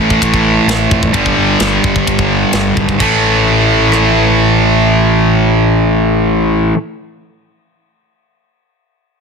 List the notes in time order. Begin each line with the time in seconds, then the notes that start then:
Already playing: A2 E3 A3
0.00 A1
0.10 kick
0.21 A1, kick, ride bell
0.34 kick
0.67 A1, snare, ride bell
0.91 F1, kick
1.03 kick
1.13 G1 G2 D3 G3, kick, ride bell
1.26 kick
1.37 G1
1.60 G1, snare, ride bell
1.84 G1, kick
1.96 kick
2.07 G1, kick, ride bell
2.19 kick
2.53 G1, snare, ride bell
2.77 G#1, kick
2.89 kick
2.99 A1 A2 E3 A3, kick, crash
3.92 cross-stick